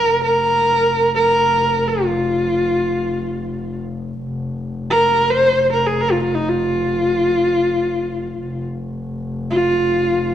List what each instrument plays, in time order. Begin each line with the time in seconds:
Already playing: horsehead fiddle A#4
0.02 double bass F1
0.24 horsehead fiddle A#4
1.16 horsehead fiddle A#4
1.88 horsehead fiddle F4
4.24 double bass F1
4.91 horsehead fiddle A#4
5.30 horsehead fiddle C5
5.73 horsehead fiddle A#4
5.87 horsehead fiddle G#4
6.01 horsehead fiddle A#4
6.12 horsehead fiddle F4
6.23 horsehead fiddle F4
6.35 horsehead fiddle D#4
6.49 horsehead fiddle F4
8.42 double bass F1
9.51 horsehead fiddle F4